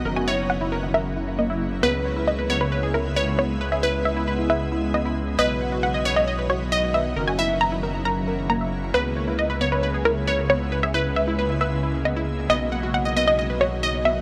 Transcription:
<<
  \new Staff \with { instrumentName = "Synth pluck" } { \time 4/4 \key cis \dorian \tempo 4 = 135 e''16 gis''8. fis''8. r16 e''8. r16 dis''8. r16 | b'8. r16 dis''8. b'8. ais'8. r16 cis''8~ | cis''16 e''8. e''8. r16 e''8. r16 dis''8. r16 | dis''8. r16 fis''8. dis''8. cis''8. r16 e''8~ |
e''16 gis''8. ais''8. r16 ais''8. r16 ais''8. r16 | b'8. r16 dis''8. b'8. ais'8. r16 cis''8~ | cis''16 e''8. e''8. r16 e''8. r16 dis''8. r16 | dis''8. r16 fis''8. dis''8. cis''8. r16 e''8 | }
  \new Staff \with { instrumentName = "Synth pluck" } { \time 4/4 \key cis \dorian dis''8 cis''2.~ cis''8 | b'4. cis''4. cis''4~ | cis''8 b'2.~ b'8 | b'4. cis''4. dis''4~ |
dis''8 e''2.~ e''8 | b'4. cis''4. cis''4~ | cis''8 b'2.~ b'8 | dis''4. dis''4. dis''4 | }
  \new Staff \with { instrumentName = "Synth pluck" } { \time 4/4 \key cis \dorian ais'16 fis'16 e'16 r8 e'16 ais'16 e'16 ais'16 r16 e'16 r16 ais16 e'16 r8 | b16 r16 cis''16 e'16 r16 b'16 b16 b'16 b'16 gis'16 e'16 r16 b'16 r16 b16 r16 | b'16 gis'16 e'16 r8 e'16 b'16 e'16 b'16 r16 e'16 r16 b16 e'16 r8 | b16 r16 fis''16 fis'16 r16 dis''16 b16 dis''16 dis''16 b'16 fis'16 r16 dis''16 r16 b16 r16 |
ais'16 fis'16 e'16 r8 e'16 ais'16 e'16 ais'16 r16 ais'16 r16 ais16 e''16 r8 | b16 r16 cis''16 e'16 r16 b'16 b16 b'16 b'16 gis'16 e'16 r16 b'16 r16 b16 r16 | b'16 gis'16 e'16 r8 e'16 b'16 e'16 b'16 r16 e'16 r16 b16 e'16 r8 | b16 r16 fis''16 fis'16 r16 dis''16 b16 dis''16 dis''16 b'16 fis'16 r16 dis''16 r16 b16 r16 | }
  \new Staff \with { instrumentName = "Analog synth bass" } { \clef bass \time 4/4 \key cis \dorian fis,,1 | cis,1~ | cis,1 | b,,1 |
fis,,1 | cis,1~ | cis,1 | b,,1 | }
>>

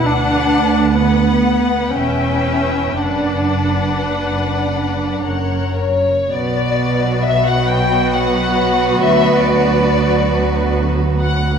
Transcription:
<<
  \new Staff \with { instrumentName = "Violin section" } { \time 3/4 \key b \minor \tempo 4 = 64 fis''4 fis''4 g''4 | fis''2 fis''8 cis''8 | d''4 e''16 fis''16 g''8 fis''4 | e''8 d''4. r8 fis''8 | }
  \new Staff \with { instrumentName = "Violin section" } { \time 3/4 \key b \minor <b' fis''>4 <b' fis''>4 <b' e''>4 | <b' d''>2 <ais' cis''>4 | <fis' b'>2.~ | <fis' b'>2. | }
  \new Staff \with { instrumentName = "Viola section" } { \time 3/4 \key b \minor d'4 b4 cis'4 | d'2 r4 | <fis b>2.~ | <fis b>2. | }
  \new Staff \with { instrumentName = "Cello section" } { \clef bass \time 3/4 \key b \minor d,2 e,4 | fis,2 fis,4 | b,2. | d,2. | }
  \new Staff \with { instrumentName = "Double bass section" } { \clef bass \time 3/4 \key b \minor d,2 e,,4 | fis,,2 fis,,4 | b,,2. | d,2. | }
>>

